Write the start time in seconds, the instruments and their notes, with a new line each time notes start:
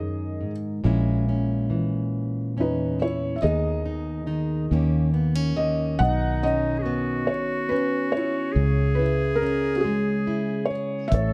Already playing: fingered electric bass D#2, steel-string acoustic guitar D#3 G#3 D#4, felt piano G#4 D#5
0.00 steel-string acoustic guitar F#2
0.41 steel-string acoustic guitar G#2
0.84 fingered electric bass A#1, steel-string acoustic guitar A#2 G#3 C#4 E4
1.29 steel-string acoustic guitar C#4
1.70 steel-string acoustic guitar E3
2.57 steel-string acoustic guitar E2 C#4, felt piano D#4 B4
3.00 steel-string acoustic guitar E4, felt piano E4 C#5
3.36 felt piano E5
3.41 steel-string acoustic guitar D#2 B3 D#4, fingered electric bass D#2, felt piano G#4 D#5
3.86 steel-string acoustic guitar D#4
4.26 steel-string acoustic guitar D#3 D#4
4.71 fingered electric bass D#2, steel-string acoustic guitar D#2 A#3 C#4 G4
5.14 steel-string acoustic guitar B3
5.35 steel-string acoustic guitar C#4
5.56 steel-string acoustic guitar D#3 G4, felt piano D#5
5.99 fingered electric bass B1, steel-string acoustic guitar B2, clarinet D#4, felt piano D#5 F#5
6.43 steel-string acoustic guitar C#4, felt piano D#5
6.78 clarinet G#4
6.83 steel-string acoustic guitar B3, clarinet F#4
7.27 felt piano C#5
7.69 steel-string acoustic guitar C#4, felt piano B4
8.12 felt piano C#5
8.17 felt piano E4
8.53 fingered electric bass C#2, steel-string acoustic guitar C#3, clarinet G#4
8.95 felt piano B4
8.99 steel-string acoustic guitar E4
9.36 felt piano A#4
9.42 steel-string acoustic guitar C#4
9.76 felt piano F#4
9.80 steel-string acoustic guitar G#3, felt piano G#4
10.27 steel-string acoustic guitar E4
10.65 felt piano C#5
10.70 steel-string acoustic guitar G#4
11.08 fingered electric bass A1, felt piano E5, kick
11.12 steel-string acoustic guitar A2, clarinet A4, felt piano C#5, closed hi-hat